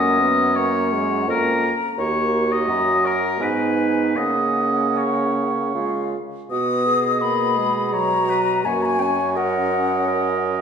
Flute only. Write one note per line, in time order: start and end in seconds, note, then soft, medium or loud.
0.00 0.54 F#5 medium
0.56 1.30 F#5 medium
1.28 2.41 A#5 medium
2.69 3.01 A#5 medium
3.03 3.08 C#6 medium
3.07 3.42 A#5 medium
3.41 4.17 G#5 medium
4.16 5.76 F#5 medium
5.75 6.18 F5 soft
6.51 7.23 D#6 medium
7.21 7.95 B5 medium
7.93 8.67 A#5 medium
8.65 8.83 G#5 medium
8.82 9.00 G#5 medium
8.82 8.86 A#5 medium
8.99 9.03 G5 medium
8.99 9.38 G#5 medium
9.37 10.42 F#5 medium